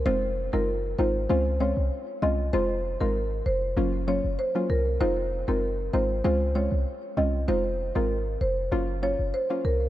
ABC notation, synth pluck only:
X:1
M:4/4
L:1/16
Q:1/4=97
K:Fphr
V:1 name="Synth pluck"
[A,CEF]3 [A,CEF]3 [A,CEF]2 [A,CDF]2 [A,CDF] z3 [A,CDF]2 | [A,CEF]3 [A,CEF] z4 [G,B,DF]2 [G,B,DF] z2 [G,B,DF] z2 | [A,CEF]3 [A,CEF]3 [A,CEF]2 [A,CDF]2 [A,CDF] z3 [A,CDF]2 | [A,CEF]3 [A,CEF] z4 [G,B,DF]2 [G,B,DF] z2 [G,B,DF] z2 |]